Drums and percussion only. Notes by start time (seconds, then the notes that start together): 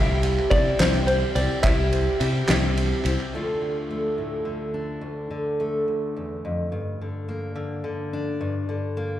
0.23 clap, ride
0.38 clap
0.51 kick, ride
0.80 snare, clap, ride
0.94 clap
1.08 ride
1.36 ride
1.64 kick, clap, ride
1.93 ride
2.21 clap, ride
2.48 snare, clap, ride
2.77 ride
3.05 clap, ride
3.19 clap